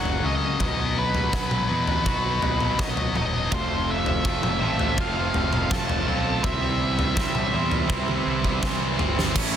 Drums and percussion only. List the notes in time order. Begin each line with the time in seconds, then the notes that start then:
0.05 floor tom
0.60 kick, floor tom
1.15 floor tom
1.33 kick, snare
1.51 mid tom
1.87 floor tom
2.06 kick
2.42 floor tom
2.60 mid tom
2.79 kick, snare, mid tom
2.97 floor tom
3.15 mid tom
3.52 kick, floor tom
4.06 floor tom
4.25 kick
4.43 mid tom
4.79 floor tom
4.98 kick
5.34 floor tom
5.53 mid tom
5.71 kick, snare, mid tom
5.89 floor tom
6.44 kick, floor tom
6.99 floor tom
7.17 kick, snare
7.35 mid tom
7.71 floor tom
7.90 kick
8.08 high tom
8.44 kick
8.63 kick, snare
8.99 floor tom
9.19 snare
9.36 kick, crash